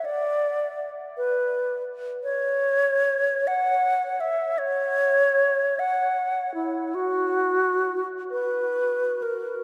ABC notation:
X:1
M:6/8
L:1/8
Q:3/8=51
K:Bm
V:1 name="Alto flute"
d2 z B2 z | c3 f2 e | c3 f2 E | F3 B2 ^A |]